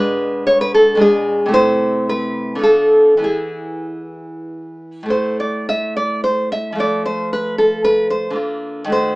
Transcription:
0.00 0.94 B2 medium
0.00 0.96 G#3 medium
0.00 0.98 D4 soft
0.00 0.45 B4 medium
0.47 0.61 C#5 loud
0.61 0.74 B4 medium
0.74 1.01 A4 medium
0.95 1.45 B2 medium
0.95 1.48 G#3 medium
0.99 1.51 D4 medium
0.99 1.52 G#4 medium
1.46 2.56 C3 medium
1.46 2.55 A3 medium
1.51 2.59 E4 medium
1.51 2.06 C5 loud
2.09 2.62 B4 loud
2.55 3.17 D3 medium
2.55 3.18 B3 medium
2.61 3.20 F4 medium
2.61 3.21 A4 medium
3.17 5.03 E3 medium
3.17 5.04 B3 soft
3.22 5.06 E4 soft
3.22 4.76 G#4 medium
5.03 6.71 A2 medium
5.03 6.73 A3 soft
5.08 6.74 E4 soft
5.08 5.38 C5 medium
5.40 5.67 D5 medium
5.69 5.96 E5 medium
5.97 6.23 D5 medium
6.24 6.50 C5 medium
6.52 6.78 E5 medium
6.72 8.30 F3 medium
6.72 8.30 A3 soft
6.78 8.33 F4 soft
6.78 7.05 D5 medium
7.06 7.31 C5 medium
7.33 7.58 B4 medium
7.58 7.84 A4 medium
7.84 8.10 B4 medium
8.10 8.36 C5 medium
8.30 8.86 D3 medium
8.30 8.88 A#3 soft
8.36 8.89 F4 soft
8.85 9.15 D#3 medium
8.85 9.15 A3 soft
8.90 9.15 F#4 soft
8.90 9.15 C5 medium

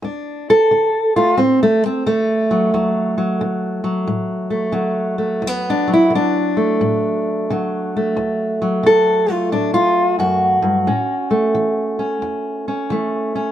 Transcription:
0.02 0.66 D2 medium
0.02 0.50 D4 soft
0.50 1.16 A4 loud
0.71 1.34 D3 medium
1.16 1.37 A3 soft
1.16 1.39 F4 medium
1.37 2.02 A2 medium
1.37 1.61 C4 medium
1.63 1.85 A3 medium
1.86 2.06 C4 medium
2.06 2.69 D3 medium
2.06 4.49 A3 medium
2.51 2.74 F#3 soft
2.74 3.37 D2 medium
2.74 3.17 F#3 soft
3.18 3.83 F#3 soft
3.41 4.04 D3 medium
3.84 4.72 F#3 soft
4.07 4.71 A2 medium
4.50 5.18 A3 soft
4.72 5.38 D3 medium
4.72 5.87 F#3 soft
5.18 5.47 A3 soft
5.42 6.06 D2 medium
5.47 6.36 B3 medium
5.70 5.91 D4 medium
5.87 7.47 F#3 soft
5.93 6.14 E4 medium
6.10 6.74 D3 medium
6.15 8.17 D4 medium
6.57 7.96 A3 soft
6.81 7.43 A2 medium
7.50 8.12 D3 medium
7.50 8.60 F#3 soft
7.96 9.28 A3 soft
8.16 8.79 D2 medium
8.62 10.87 F#3 soft
8.83 9.46 D3 medium
8.83 9.31 A4 medium
9.29 10.87 A3 soft
9.29 9.52 F4 medium
9.52 10.14 A2 medium
9.52 9.73 D4 medium
9.74 10.19 F4 medium
10.19 10.62 F#2 medium
10.19 12.89 F#4 medium
10.62 10.86 G2 medium
10.87 11.49 A2 medium
10.87 11.98 C#4 soft
11.31 12.89 A3 soft
11.55 12.17 E3 medium
11.99 12.66 C#4 soft
12.22 12.84 E2 medium
12.68 13.34 C#4 soft
12.90 13.52 E3 medium
12.90 13.52 A3 soft
13.35 13.52 C#4 soft

